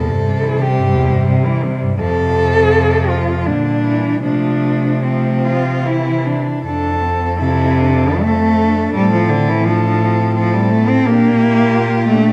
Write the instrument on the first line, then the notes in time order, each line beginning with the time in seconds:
cello
Already playing: E2 C3 G3 A4
0.11 G2
0.28 C3
0.45 E3
0.60 C3 G4
0.78 G2
0.94 E2
1.12 G2
1.29 C3
1.45 E3
1.64 C3
1.82 G2
2.00 F2 C3 F3 A4
3.09 F4
3.45 A#2 D3 G3 D4
3.84 E3
4.22 C3 F3 A3 D4
5.03 F3 A3 C4
5.45 F4
5.84 E3 E4
6.26 D4
6.64 F2 D4 A4
7.02 C4
7.38 C3 E4 A4
7.81 D4
8.21 A3 C4 A4
8.61 D4
8.94 A2 G3 C4 A4
9.13 F3
9.30 D3
9.49 E3
9.65 F3 D4 A4
10.04 C4
10.35 F3 A4
10.54 G3
10.70 A3
10.88 C4
11.06 A#2 A#3 D4 G4
11.41 E4
11.75 F4
12.08 A3
12.13 D4